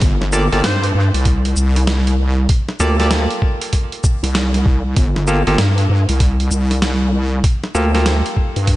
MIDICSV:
0, 0, Header, 1, 5, 480
1, 0, Start_track
1, 0, Key_signature, -2, "minor"
1, 0, Tempo, 618557
1, 13, Time_signature, 4, 2, 24, 8
1, 6800, End_track
2, 0, Start_track
2, 0, Title_t, "Analog synth lead"
2, 0, Program_c, 0, 81
2, 253, Note_on_c, 0, 74, 89
2, 351, Note_off_c, 0, 74, 0
2, 407, Note_on_c, 0, 74, 76
2, 462, Note_off_c, 0, 74, 0
2, 498, Note_on_c, 0, 72, 99
2, 660, Note_off_c, 0, 72, 0
2, 2173, Note_on_c, 0, 74, 86
2, 2271, Note_off_c, 0, 74, 0
2, 2325, Note_on_c, 0, 74, 76
2, 2381, Note_off_c, 0, 74, 0
2, 6800, End_track
3, 0, Start_track
3, 0, Title_t, "Clav"
3, 0, Program_c, 1, 7
3, 254, Note_on_c, 1, 58, 104
3, 254, Note_on_c, 1, 65, 91
3, 254, Note_on_c, 1, 67, 90
3, 254, Note_on_c, 1, 69, 111
3, 370, Note_off_c, 1, 58, 0
3, 370, Note_off_c, 1, 65, 0
3, 370, Note_off_c, 1, 67, 0
3, 370, Note_off_c, 1, 69, 0
3, 407, Note_on_c, 1, 58, 91
3, 407, Note_on_c, 1, 69, 100
3, 408, Note_on_c, 1, 65, 82
3, 408, Note_on_c, 1, 67, 83
3, 508, Note_off_c, 1, 58, 0
3, 508, Note_off_c, 1, 65, 0
3, 508, Note_off_c, 1, 67, 0
3, 508, Note_off_c, 1, 69, 0
3, 2173, Note_on_c, 1, 65, 93
3, 2173, Note_on_c, 1, 69, 111
3, 2174, Note_on_c, 1, 58, 98
3, 2174, Note_on_c, 1, 67, 96
3, 2303, Note_off_c, 1, 65, 0
3, 2303, Note_off_c, 1, 69, 0
3, 2304, Note_off_c, 1, 58, 0
3, 2304, Note_off_c, 1, 67, 0
3, 2327, Note_on_c, 1, 65, 73
3, 2328, Note_on_c, 1, 58, 81
3, 2328, Note_on_c, 1, 67, 74
3, 2328, Note_on_c, 1, 69, 86
3, 4073, Note_off_c, 1, 58, 0
3, 4073, Note_off_c, 1, 65, 0
3, 4073, Note_off_c, 1, 69, 0
3, 4074, Note_off_c, 1, 67, 0
3, 4093, Note_on_c, 1, 65, 93
3, 4094, Note_on_c, 1, 58, 104
3, 4094, Note_on_c, 1, 67, 91
3, 4094, Note_on_c, 1, 69, 110
3, 4209, Note_off_c, 1, 65, 0
3, 4210, Note_off_c, 1, 58, 0
3, 4210, Note_off_c, 1, 67, 0
3, 4210, Note_off_c, 1, 69, 0
3, 4246, Note_on_c, 1, 65, 86
3, 4246, Note_on_c, 1, 67, 83
3, 4247, Note_on_c, 1, 58, 92
3, 4247, Note_on_c, 1, 69, 100
3, 4347, Note_off_c, 1, 65, 0
3, 4348, Note_off_c, 1, 58, 0
3, 4348, Note_off_c, 1, 67, 0
3, 4348, Note_off_c, 1, 69, 0
3, 6012, Note_on_c, 1, 58, 102
3, 6012, Note_on_c, 1, 65, 93
3, 6012, Note_on_c, 1, 69, 112
3, 6013, Note_on_c, 1, 67, 88
3, 6143, Note_off_c, 1, 58, 0
3, 6143, Note_off_c, 1, 65, 0
3, 6143, Note_off_c, 1, 67, 0
3, 6143, Note_off_c, 1, 69, 0
3, 6166, Note_on_c, 1, 58, 82
3, 6166, Note_on_c, 1, 65, 72
3, 6166, Note_on_c, 1, 69, 89
3, 6167, Note_on_c, 1, 67, 72
3, 6800, Note_off_c, 1, 58, 0
3, 6800, Note_off_c, 1, 65, 0
3, 6800, Note_off_c, 1, 67, 0
3, 6800, Note_off_c, 1, 69, 0
3, 6800, End_track
4, 0, Start_track
4, 0, Title_t, "Wobble bass"
4, 0, Program_c, 2, 39
4, 16, Note_on_c, 2, 31, 93
4, 383, Note_off_c, 2, 31, 0
4, 409, Note_on_c, 2, 31, 93
4, 481, Note_off_c, 2, 31, 0
4, 494, Note_on_c, 2, 43, 100
4, 720, Note_off_c, 2, 43, 0
4, 736, Note_on_c, 2, 43, 99
4, 863, Note_off_c, 2, 43, 0
4, 886, Note_on_c, 2, 36, 98
4, 1199, Note_off_c, 2, 36, 0
4, 1214, Note_on_c, 2, 36, 102
4, 1920, Note_off_c, 2, 36, 0
4, 2171, Note_on_c, 2, 38, 95
4, 2540, Note_off_c, 2, 38, 0
4, 3283, Note_on_c, 2, 36, 96
4, 3838, Note_off_c, 2, 36, 0
4, 3853, Note_on_c, 2, 31, 97
4, 4222, Note_off_c, 2, 31, 0
4, 4246, Note_on_c, 2, 31, 95
4, 4320, Note_off_c, 2, 31, 0
4, 4332, Note_on_c, 2, 43, 101
4, 4559, Note_off_c, 2, 43, 0
4, 4573, Note_on_c, 2, 43, 95
4, 4702, Note_off_c, 2, 43, 0
4, 4726, Note_on_c, 2, 36, 97
4, 5040, Note_off_c, 2, 36, 0
4, 5052, Note_on_c, 2, 36, 99
4, 5759, Note_off_c, 2, 36, 0
4, 6013, Note_on_c, 2, 38, 98
4, 6382, Note_off_c, 2, 38, 0
4, 6646, Note_on_c, 2, 43, 93
4, 6800, Note_off_c, 2, 43, 0
4, 6800, End_track
5, 0, Start_track
5, 0, Title_t, "Drums"
5, 12, Note_on_c, 9, 42, 86
5, 16, Note_on_c, 9, 36, 120
5, 89, Note_off_c, 9, 42, 0
5, 94, Note_off_c, 9, 36, 0
5, 168, Note_on_c, 9, 40, 42
5, 245, Note_off_c, 9, 40, 0
5, 253, Note_on_c, 9, 82, 64
5, 331, Note_off_c, 9, 82, 0
5, 408, Note_on_c, 9, 42, 41
5, 485, Note_off_c, 9, 42, 0
5, 496, Note_on_c, 9, 38, 120
5, 496, Note_on_c, 9, 42, 85
5, 573, Note_off_c, 9, 38, 0
5, 573, Note_off_c, 9, 42, 0
5, 648, Note_on_c, 9, 42, 41
5, 726, Note_off_c, 9, 42, 0
5, 888, Note_on_c, 9, 42, 59
5, 966, Note_off_c, 9, 42, 0
5, 973, Note_on_c, 9, 42, 86
5, 975, Note_on_c, 9, 36, 102
5, 1050, Note_off_c, 9, 42, 0
5, 1052, Note_off_c, 9, 36, 0
5, 1126, Note_on_c, 9, 42, 39
5, 1204, Note_off_c, 9, 42, 0
5, 1215, Note_on_c, 9, 82, 64
5, 1292, Note_off_c, 9, 82, 0
5, 1368, Note_on_c, 9, 40, 39
5, 1368, Note_on_c, 9, 42, 56
5, 1446, Note_off_c, 9, 40, 0
5, 1446, Note_off_c, 9, 42, 0
5, 1454, Note_on_c, 9, 38, 120
5, 1454, Note_on_c, 9, 42, 85
5, 1531, Note_off_c, 9, 38, 0
5, 1531, Note_off_c, 9, 42, 0
5, 1607, Note_on_c, 9, 42, 40
5, 1685, Note_off_c, 9, 42, 0
5, 1933, Note_on_c, 9, 42, 85
5, 1934, Note_on_c, 9, 36, 123
5, 2010, Note_off_c, 9, 42, 0
5, 2012, Note_off_c, 9, 36, 0
5, 2084, Note_on_c, 9, 40, 41
5, 2162, Note_off_c, 9, 40, 0
5, 2172, Note_on_c, 9, 82, 63
5, 2249, Note_off_c, 9, 82, 0
5, 2325, Note_on_c, 9, 38, 41
5, 2325, Note_on_c, 9, 42, 39
5, 2403, Note_off_c, 9, 38, 0
5, 2403, Note_off_c, 9, 42, 0
5, 2411, Note_on_c, 9, 38, 123
5, 2411, Note_on_c, 9, 42, 88
5, 2488, Note_off_c, 9, 38, 0
5, 2488, Note_off_c, 9, 42, 0
5, 2565, Note_on_c, 9, 42, 39
5, 2643, Note_off_c, 9, 42, 0
5, 2654, Note_on_c, 9, 36, 68
5, 2732, Note_off_c, 9, 36, 0
5, 2805, Note_on_c, 9, 42, 57
5, 2883, Note_off_c, 9, 42, 0
5, 2892, Note_on_c, 9, 42, 86
5, 2894, Note_on_c, 9, 36, 63
5, 2970, Note_off_c, 9, 42, 0
5, 2972, Note_off_c, 9, 36, 0
5, 3045, Note_on_c, 9, 42, 39
5, 3123, Note_off_c, 9, 42, 0
5, 3134, Note_on_c, 9, 36, 112
5, 3134, Note_on_c, 9, 82, 59
5, 3211, Note_off_c, 9, 82, 0
5, 3212, Note_off_c, 9, 36, 0
5, 3288, Note_on_c, 9, 42, 57
5, 3366, Note_off_c, 9, 42, 0
5, 3375, Note_on_c, 9, 38, 126
5, 3375, Note_on_c, 9, 42, 84
5, 3452, Note_off_c, 9, 38, 0
5, 3452, Note_off_c, 9, 42, 0
5, 3526, Note_on_c, 9, 40, 42
5, 3526, Note_on_c, 9, 42, 40
5, 3603, Note_off_c, 9, 40, 0
5, 3603, Note_off_c, 9, 42, 0
5, 3614, Note_on_c, 9, 36, 110
5, 3692, Note_off_c, 9, 36, 0
5, 3852, Note_on_c, 9, 42, 86
5, 3854, Note_on_c, 9, 36, 126
5, 3930, Note_off_c, 9, 42, 0
5, 3932, Note_off_c, 9, 36, 0
5, 4006, Note_on_c, 9, 40, 40
5, 4084, Note_off_c, 9, 40, 0
5, 4092, Note_on_c, 9, 82, 63
5, 4169, Note_off_c, 9, 82, 0
5, 4245, Note_on_c, 9, 42, 40
5, 4322, Note_off_c, 9, 42, 0
5, 4333, Note_on_c, 9, 38, 127
5, 4333, Note_on_c, 9, 42, 81
5, 4410, Note_off_c, 9, 38, 0
5, 4410, Note_off_c, 9, 42, 0
5, 4484, Note_on_c, 9, 42, 39
5, 4562, Note_off_c, 9, 42, 0
5, 4724, Note_on_c, 9, 42, 58
5, 4802, Note_off_c, 9, 42, 0
5, 4812, Note_on_c, 9, 42, 84
5, 4813, Note_on_c, 9, 36, 110
5, 4890, Note_off_c, 9, 42, 0
5, 4891, Note_off_c, 9, 36, 0
5, 4966, Note_on_c, 9, 42, 39
5, 5044, Note_off_c, 9, 42, 0
5, 5053, Note_on_c, 9, 82, 60
5, 5131, Note_off_c, 9, 82, 0
5, 5206, Note_on_c, 9, 40, 37
5, 5206, Note_on_c, 9, 42, 57
5, 5284, Note_off_c, 9, 40, 0
5, 5284, Note_off_c, 9, 42, 0
5, 5293, Note_on_c, 9, 38, 127
5, 5293, Note_on_c, 9, 42, 83
5, 5371, Note_off_c, 9, 38, 0
5, 5371, Note_off_c, 9, 42, 0
5, 5773, Note_on_c, 9, 36, 121
5, 5773, Note_on_c, 9, 42, 84
5, 5850, Note_off_c, 9, 36, 0
5, 5850, Note_off_c, 9, 42, 0
5, 5925, Note_on_c, 9, 40, 40
5, 6003, Note_off_c, 9, 40, 0
5, 6014, Note_on_c, 9, 82, 65
5, 6092, Note_off_c, 9, 82, 0
5, 6167, Note_on_c, 9, 38, 38
5, 6167, Note_on_c, 9, 42, 38
5, 6244, Note_off_c, 9, 38, 0
5, 6244, Note_off_c, 9, 42, 0
5, 6253, Note_on_c, 9, 38, 121
5, 6253, Note_on_c, 9, 42, 81
5, 6331, Note_off_c, 9, 38, 0
5, 6331, Note_off_c, 9, 42, 0
5, 6408, Note_on_c, 9, 42, 38
5, 6486, Note_off_c, 9, 42, 0
5, 6493, Note_on_c, 9, 36, 67
5, 6570, Note_off_c, 9, 36, 0
5, 6645, Note_on_c, 9, 42, 54
5, 6722, Note_off_c, 9, 42, 0
5, 6731, Note_on_c, 9, 42, 81
5, 6733, Note_on_c, 9, 36, 64
5, 6800, Note_off_c, 9, 36, 0
5, 6800, Note_off_c, 9, 42, 0
5, 6800, End_track
0, 0, End_of_file